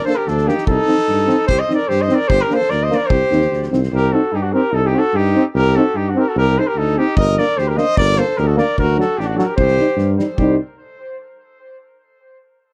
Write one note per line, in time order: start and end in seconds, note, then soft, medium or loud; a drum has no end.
0.05 0.14 A#3 medium
0.05 0.14 D4 medium
0.05 0.19 A4 loud
0.05 0.17 C5 loud
0.05 snare soft
0.16 0.31 G4 medium
0.16 0.29 A#4 medium
0.27 0.49 D2 medium
0.27 0.53 D4 medium
0.27 0.49 A4 loud
0.27 snare soft
0.38 snare soft
0.46 0.54 A#3 medium
0.46 0.55 D4 medium
0.46 0.66 G4 loud
0.46 snare soft
0.51 0.69 D#4 medium
0.58 snare soft
0.67 0.79 C2 medium
0.67 1.46 D#4 loud
0.67 1.44 A4 loud
0.67 kick medium
0.86 0.94 C4 medium
0.86 0.95 D#4 medium
0.86 snare soft
0.98 snare soft
1.08 1.30 G2 medium
1.08 snare soft
1.27 1.35 C4 medium
1.27 1.37 D#4 soft
1.27 snare soft
1.47 1.60 C2 medium
1.47 1.63 G4 loud
1.47 1.61 C5 loud
1.47 kick medium
1.59 1.75 C5 medium
1.59 1.73 D#5 loud
1.69 1.77 C4 medium
1.69 1.78 D#4 medium
1.69 snare soft
1.74 1.90 A#4 medium
1.74 1.90 D5 loud
1.88 2.12 G2 medium
1.88 2.03 G4 loud
1.88 2.03 C5 loud
1.88 snare soft
2.02 2.17 C5 medium
2.02 2.16 D#5 medium
2.09 2.17 C4 medium
2.09 2.17 D#4 medium
2.09 snare soft
2.14 2.31 A#4 loud
2.14 2.29 D5 loud
2.28 2.40 G1 loud
2.28 2.43 G4 loud
2.28 2.43 C5 loud
2.28 kick medium
2.42 2.58 G4 medium
2.42 2.55 A#4 loud
2.48 2.59 A#3 medium
2.48 2.57 D4 medium
2.48 snare soft
2.54 2.73 A4 medium
2.54 2.71 C5 loud
2.61 snare soft
2.70 2.92 D2 medium
2.70 2.85 A#4 loud
2.70 2.84 D5 loud
2.70 snare soft
2.83 3.00 C5 medium
2.83 2.96 D#5 medium
2.90 2.98 A#3 medium
2.90 2.98 D4 medium
2.90 snare soft
2.95 3.12 A#4 loud
2.95 3.08 D5 loud
3.06 3.21 C2 medium
3.06 3.69 C5 loud
3.06 kick medium
3.11 3.71 G4 loud
3.30 3.49 D#2 medium
3.30 3.38 C4 medium
3.30 3.40 D#4 medium
3.30 snare soft
3.41 snare soft
3.51 3.69 D2 medium
3.51 snare soft
3.63 snare soft
3.71 3.90 C2 medium
3.71 3.79 C4 medium
3.71 3.80 D#4 soft
3.71 snare soft
3.83 snare soft
3.92 4.14 C2 loud
3.92 4.14 G4 loud
3.92 4.14 A#4 loud
4.12 4.20 C4 medium
4.12 4.21 D#4 medium
4.12 4.34 F#4 medium
4.12 4.37 A4 medium
4.32 4.55 G2 medium
4.32 4.44 D#4 medium
4.32 4.44 G4 medium
4.42 4.55 D4 medium
4.42 4.54 F#4 medium
4.53 4.61 C4 medium
4.53 4.61 D#4 soft
4.53 4.73 G4 medium
4.53 4.76 A#4 loud
4.72 4.95 C2 medium
4.72 4.83 D#4 medium
4.72 4.88 A4 loud
4.83 4.96 D#4 medium
4.83 5.00 G4 loud
4.93 5.01 C4 medium
4.93 5.03 D#4 medium
4.93 5.18 F#4 medium
4.99 5.18 A4 loud
5.13 5.36 G2 medium
5.13 5.45 D#4 medium
5.13 5.45 G4 loud
5.33 5.43 C4 medium
5.33 5.42 D#4 medium
5.54 5.76 C2 loud
5.54 5.79 G4 loud
5.54 5.77 A#4 loud
5.76 5.84 C4 medium
5.76 5.84 D#4 medium
5.76 5.98 F#4 medium
5.76 5.98 A4 loud
5.94 6.16 G2 medium
5.94 6.12 D#4 medium
5.94 6.10 G4 medium
6.09 6.22 D4 medium
6.09 6.21 F#4 medium
6.15 6.23 C4 medium
6.15 6.24 D#4 medium
6.15 6.30 A#4 loud
6.20 6.30 G4 medium
6.28 6.36 F#4 medium
6.28 6.37 A4 medium
6.36 6.58 C2 loud
6.36 6.61 G4 loud
6.36 6.60 A#4 loud
6.56 6.63 C4 medium
6.56 6.65 D#4 medium
6.56 6.69 A4 medium
6.56 6.69 C5 loud
6.67 6.80 G4 medium
6.67 6.79 A#4 medium
6.75 6.97 D2 medium
6.75 6.99 D#4 loud
6.75 6.99 A4 medium
6.97 7.04 C4 medium
6.97 7.17 D#4 medium
6.97 7.07 D#4 soft
6.97 7.17 G4 loud
7.17 7.38 G1 loud
7.17 7.39 A#4 loud
7.17 7.40 D#5 loud
7.17 kick loud
7.38 7.46 A#3 medium
7.38 7.46 D4 medium
7.38 7.60 A#4 loud
7.38 7.59 D5 loud
7.38 snare soft
7.57 7.79 D2 medium
7.57 7.69 G4 loud
7.57 7.70 C5 loud
7.57 snare soft
7.68 7.80 G4 medium
7.68 7.79 A#4 medium
7.75 7.83 A#3 medium
7.75 7.85 D4 medium
7.75 7.97 C5 loud
7.75 7.97 D#5 loud
7.75 snare soft
7.97 8.20 G1 loud
7.97 8.23 A#4 loud
7.97 8.19 D5 loud
7.97 kick medium
8.16 8.24 A#3 medium
8.16 8.24 D4 medium
8.16 8.39 C5 loud
8.16 snare soft
8.21 8.41 A4 loud
8.37 8.60 D2 loud
8.37 8.50 G4 medium
8.37 8.49 A#4 loud
8.37 snare soft
8.47 8.57 F#4 medium
8.47 8.57 A4 medium
8.56 8.64 A#3 medium
8.56 8.65 D4 medium
8.56 8.76 A#4 loud
8.56 8.76 D5 loud
8.56 snare soft
8.78 9.00 D2 medium
8.78 8.97 F#4 loud
8.78 8.97 A#4 loud
8.78 kick medium
8.96 9.05 F#3 medium
8.96 9.04 D4 medium
8.96 9.22 F#4 medium
8.96 9.19 A4 loud
9.01 snare soft
9.18 9.40 A1 medium
9.18 9.29 D4 medium
9.18 9.28 G4 medium
9.18 snare soft
9.26 9.41 D4 medium
9.26 9.39 F#4 medium
9.36 9.45 F#3 medium
9.36 9.45 D4 medium
9.36 9.51 F#4 medium
9.36 9.47 A4 medium
9.36 snare soft
9.45 9.56 A#4 medium
9.50 9.58 G4 medium
9.57 9.79 C2 loud
9.57 10.15 G4 loud
9.57 10.13 C5 loud
9.57 kick medium
9.68 snare soft
9.78 9.86 G3 medium
9.78 9.87 D#4 medium
9.78 snare soft
9.96 10.19 G2 medium
9.96 snare soft
10.17 10.25 G3 medium
10.17 10.26 D#4 soft
10.17 snare soft
10.36 10.57 C2 medium
10.36 10.56 G3 medium
10.36 10.58 D#4 medium
10.36 10.56 G4 medium
10.36 10.56 C5 medium
10.36 kick medium